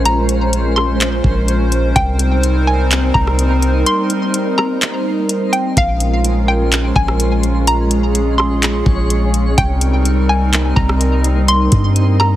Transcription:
Already playing: 808-style bass A#1, synth texture G#3 C#4 C5, analog synth pad G#3 C#4 F4 A#4 C5
0.05 synth pluck A#5, closed hi-hat
0.29 closed hi-hat
0.53 closed hi-hat
0.76 synth pluck C6, cross-stick
1.01 clap, closed hi-hat
1.24 808-style bass A#1, kick
1.48 closed hi-hat
1.72 closed hi-hat
1.96 808-style bass C2, analog synth pad G3 C4 D#4 A#4, synth texture A#3 D#4, synth pluck G5, kick, closed hi-hat
2.19 closed hi-hat
2.43 closed hi-hat
2.67 synth pluck G#5
2.91 clap, closed hi-hat
3.14 808-style bass C2, synth pluck A#5, kick
3.27 cross-stick
3.39 closed hi-hat
3.62 closed hi-hat
3.86 synth pluck C6, closed hi-hat
4.10 closed hi-hat
4.34 closed hi-hat
4.58 synth pluck A#5, cross-stick
4.82 clap, closed hi-hat
5.29 closed hi-hat
5.53 synth pluck G5, closed hi-hat
5.77 808-style bass A#1, synth texture G#3 C#4 C5, analog synth pad G#3 C#4 F4 A#4, synth pluck F5, kick, closed hi-hat
6.00 closed hi-hat
6.24 closed hi-hat
6.48 synth pluck G5
6.72 clap, closed hi-hat
6.96 808-style bass A#1, synth pluck G#5, kick
7.08 cross-stick
7.20 closed hi-hat
7.43 closed hi-hat
7.67 analog synth pad G#4, synth texture C#5, synth pluck A#5, closed hi-hat
7.91 closed hi-hat
8.15 closed hi-hat
8.38 synth pluck C6, cross-stick
8.63 clap, closed hi-hat
8.86 808-style bass A#1, kick
9.10 closed hi-hat
9.34 closed hi-hat
9.58 808-style bass C2, analog synth pad G3 C4 D#4 A#4, synth texture A#3 D#4 C5, synth pluck G5, kick, closed hi-hat
9.81 closed hi-hat
10.05 closed hi-hat
10.29 synth pluck G#5
10.53 clap, closed hi-hat
10.76 808-style bass C2, synth pluck A#5, kick
10.89 cross-stick
11.01 closed hi-hat
11.24 closed hi-hat
11.48 synth pluck C6, closed hi-hat
11.72 808-style bass G2, kick, closed hi-hat
11.96 closed hi-hat
12.20 synth pluck A#5, cross-stick

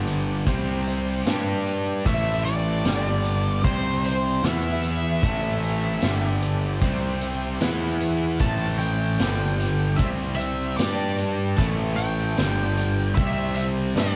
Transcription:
Already playing: picked electric bass G1, distorted electric guitar G2 D3 G3, tonewheel organ D4 G4 D5
0.07 closed hi-hat
0.46 picked electric bass C2, distorted electric guitar C3 G3 C4, tonewheel organ C4 G4 C5, kick, closed hi-hat
0.87 closed hi-hat
1.26 picked electric bass G2, distorted electric guitar G3 D4 G4, tonewheel organ D4 G4 D5, snare, closed hi-hat
1.67 closed hi-hat
2.04 picked electric bass A1, distorted electric guitar A2 E3 A3, tonewheel organ E4 A4 C5, lead electric guitar E5, kick, closed hi-hat
2.45 lead electric guitar D5, closed hi-hat
2.85 picked electric bass G1, distorted electric guitar G2 D3 G3, tonewheel organ D4 G4 D5, snare, closed hi-hat
3.25 closed hi-hat
3.63 picked electric bass C2, distorted electric guitar C3 G3 C4, tonewheel organ C4 G4 C5, lead electric guitar C5, kick, closed hi-hat
4.04 lead electric guitar C5, closed hi-hat
4.43 picked electric bass E2, distorted electric guitar E3 B3 E4, tonewheel organ B3 E4 B4, lead electric guitar E5, snare, closed hi-hat
4.83 closed hi-hat
5.21 picked electric bass A1, distorted electric guitar A2 E3 A3, tonewheel organ C4 E4 A4, kick, closed hi-hat
5.63 closed hi-hat
6.02 picked electric bass G1, distorted electric guitar G2 D3 G3, tonewheel organ D4 G4 D5, snare, closed hi-hat
6.42 closed hi-hat
6.79 picked electric bass C2, distorted electric guitar C3 G3, tonewheel organ C4 G4 C5, kick, closed hi-hat
6.83 distorted electric guitar C4
7.21 closed hi-hat
7.61 picked electric bass E2, distorted electric guitar E3 B3 E4, tonewheel organ B3 E4 B4, snare, closed hi-hat
8.00 closed hi-hat
8.39 picked electric bass A1, distorted electric guitar A2 E3 A3, tonewheel organ C4 E4 A4, lead electric guitar A5, kick, closed hi-hat
8.79 lead electric guitar G5, closed hi-hat
9.19 picked electric bass G1, distorted electric guitar G2 D3 G3, tonewheel organ D4 G4 D5, snare, closed hi-hat
9.60 closed hi-hat
9.96 picked electric bass C2, distorted electric guitar C3 G3, lead electric guitar E5, kick, closed hi-hat
10.01 distorted electric guitar C4, tonewheel organ C4 G4 C5
10.36 lead electric guitar E5, closed hi-hat
10.77 picked electric bass G2, distorted electric guitar G3 D4 G4, tonewheel organ D4 G4 D5, lead electric guitar D5, snare, closed hi-hat
11.18 closed hi-hat
11.57 picked electric bass A1, distorted electric guitar A2 E3 A3, tonewheel organ E4 A4 C5, lead electric guitar A5, kick, closed hi-hat
11.96 lead electric guitar G5, closed hi-hat
12.37 picked electric bass G1, distorted electric guitar G2 D3 G3, tonewheel organ D4 G4 D5, snare, closed hi-hat
12.77 closed hi-hat
13.15 picked electric bass C2, distorted electric guitar C3 G3 C4, tonewheel organ C4 G4 C5, lead electric guitar E5, kick, closed hi-hat
13.56 lead electric guitar E5, closed hi-hat
13.96 picked electric bass G2, distorted electric guitar G3 D4 G4, tonewheel organ D4 G4 D5, lead electric guitar D5, snare, closed hi-hat

